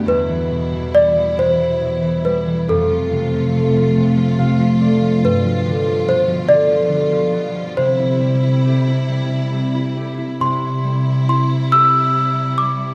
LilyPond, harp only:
<<
  \new Staff \with { instrumentName = "Harp" } { \time 6/8 \key c \major \tempo 4. = 46 r2. | r2 f''8 d''8 | r2. | r2. |
r2. | }
  \new Staff \with { instrumentName = "Harp" } { \clef bass \time 6/8 \key c \major e,16 e16 b,16 e16 g16 e16 b,16 e16 b,16 e16 g16 e16 | f,16 f16 c16 f16 a16 f16 c16 f16 c16 f16 a16 f16 | g,16 f16 d16 f16 b,16 f16 d16 f16 d16 f16 b16 f16 | c16 e'16 g16 e'16 g'16 e'16 g16 e'16 g16 e'16 g'16 e'16 |
c8 g8 e'8 g'4. | }
>>